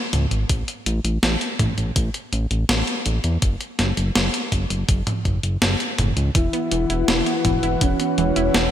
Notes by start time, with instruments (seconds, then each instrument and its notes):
0.13 analog synth bass C#2, closed hi-hat, mid tom
0.31 analog synth bass G#1, closed hi-hat
0.49 analog synth bass A1, kick, closed hi-hat
0.68 closed hi-hat
0.86 analog synth bass A1, closed hi-hat
1.04 analog synth bass A1, closed hi-hat
1.23 analog synth bass A1, snare, closed hi-hat
1.41 closed hi-hat
1.59 analog synth bass A1, kick, closed hi-hat, mid tom
1.78 analog synth bass A1, closed hi-hat
1.96 analog synth bass A1, kick, closed hi-hat
2.14 closed hi-hat
2.33 analog synth bass A1, closed hi-hat
2.51 analog synth bass A1, closed hi-hat
2.69 analog synth bass A1, snare, closed hi-hat
2.87 closed hi-hat
3.06 analog synth bass A1, closed hi-hat
3.24 analog synth bass E2, closed hi-hat
3.42 analog synth bass F#1, kick, closed hi-hat
3.61 closed hi-hat
3.79 analog synth bass F#1, snare, closed hi-hat
3.97 analog synth bass F#1, closed hi-hat
4.15 analog synth bass F#1, snare, closed hi-hat
4.34 closed hi-hat
4.52 analog synth bass F#1, kick, closed hi-hat
4.70 analog synth bass F#1, closed hi-hat
4.89 analog synth bass F#1, kick, closed hi-hat
5.07 closed hi-hat, mid tom
5.25 analog synth bass F#1, kick, closed hi-hat
5.43 analog synth bass F#1, closed hi-hat
5.62 analog synth bass F#1, snare, closed hi-hat
5.80 closed hi-hat
5.99 analog synth bass F#1, closed hi-hat, mid tom
6.17 analog synth bass C#2, closed hi-hat
6.35 analog synth bass E1, analog synth pad E3 F#4 B4 F#5, synth arpeggio sound E3, analog synth lead E4, kick, closed hi-hat
6.53 synth arpeggio sound B3, closed hi-hat
6.72 analog synth bass E1, synth arpeggio sound E3, closed hi-hat
6.90 analog synth bass E1, synth arpeggio sound E4, closed hi-hat
7.08 analog synth bass E1, synth arpeggio sound E3, snare, closed hi-hat
7.26 synth arpeggio sound B3, closed hi-hat
7.45 analog synth bass E1, synth arpeggio sound E3, kick, closed hi-hat, mid tom
7.63 analog synth bass E1, synth arpeggio sound E4, closed hi-hat
7.81 analog synth bass E1, synth arpeggio sound E3, analog synth lead C#4, kick, closed hi-hat
8.00 synth arpeggio sound B3, closed hi-hat
8.18 analog synth bass E1, synth arpeggio sound E3, closed hi-hat
8.36 analog synth bass E1, synth arpeggio sound E4, closed hi-hat
8.54 analog synth bass E1, synth arpeggio sound E3, snare, closed hi-hat